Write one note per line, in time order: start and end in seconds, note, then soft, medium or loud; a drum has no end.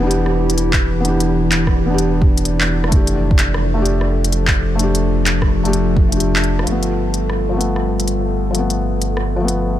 0.00 2.90 E1 medium
0.00 2.92 E3 medium
0.00 1.00 B3 medium
0.00 0.03 D4 medium
0.00 1.03 D4 medium
0.00 2.92 E4 medium
0.00 0.07 G4 medium
0.00 3.56 G4 medium
0.07 1.05 G4 loud
0.11 closed hi-hat soft
0.26 cross-stick soft
0.50 closed hi-hat soft
0.58 closed hi-hat soft
0.73 kick medium
0.73 clap loud
0.81 8.13 D5 medium
1.00 1.84 B3 medium
1.04 1.87 D4 medium
1.04 1.89 G4 medium
1.04 closed hi-hat medium
1.20 closed hi-hat medium
1.52 clap loud
1.52 closed hi-hat medium
1.67 kick medium
1.67 cross-stick soft
1.86 2.88 B3 medium
1.90 2.90 D4 medium
1.90 2.92 G4 loud
1.98 closed hi-hat medium
2.22 kick loud
2.38 closed hi-hat soft
2.45 closed hi-hat medium
2.61 clap loud
2.84 cross-stick soft
2.88 6.65 F1 medium
2.88 6.67 F3 medium
2.88 3.72 A3 medium
2.88 3.74 D4 medium
2.88 kick loud
2.88 closed hi-hat medium
2.96 3.76 G4 medium
3.07 9.79 F4 medium
3.07 closed hi-hat medium
3.31 9.79 A4 medium
3.31 kick loud
3.39 clap loud
3.39 closed hi-hat medium
3.54 cross-stick medium
3.74 4.74 A3 medium
3.74 4.78 D4 medium
3.82 4.80 G4 loud
3.82 closed hi-hat medium
4.01 cross-stick soft
4.24 closed hi-hat medium
4.32 closed hi-hat medium
4.47 kick medium
4.47 clap medium
4.75 5.60 A3 medium
4.79 5.62 D4 medium
4.79 closed hi-hat medium
4.83 5.64 G4 medium
4.95 closed hi-hat medium
5.26 clap loud
5.26 closed hi-hat medium
5.42 kick medium
5.42 cross-stick medium
5.63 6.07 A3 medium
5.63 6.09 D4 medium
5.63 6.10 G4 loud
5.63 closed hi-hat soft
5.73 closed hi-hat medium
5.96 kick loud
6.09 6.63 A3 medium
6.09 6.65 D4 medium
6.09 closed hi-hat medium
6.16 6.67 G4 medium
6.16 closed hi-hat medium
6.36 clap loud
6.44 closed hi-hat soft
6.59 7.47 F3 medium
6.59 cross-stick medium
6.67 9.79 G1 medium
6.67 9.79 G3 medium
6.67 7.49 A3 medium
6.67 closed hi-hat medium
6.71 7.51 B3 medium
6.83 closed hi-hat soft
7.14 closed hi-hat medium
7.30 cross-stick soft
7.49 8.49 F3 medium
7.49 8.53 A3 medium
7.57 8.55 B3 medium
7.57 closed hi-hat soft
7.76 cross-stick soft
8.00 closed hi-hat soft
8.08 closed hi-hat soft
8.35 9.79 B4 medium
8.51 9.35 F3 medium
8.55 9.37 A3 medium
8.55 9.39 B3 medium
8.55 closed hi-hat medium
8.70 closed hi-hat medium
9.02 closed hi-hat medium
9.17 cross-stick soft
9.36 9.79 F3 medium
9.40 9.79 A3 medium
9.44 9.79 B3 medium
9.44 closed hi-hat soft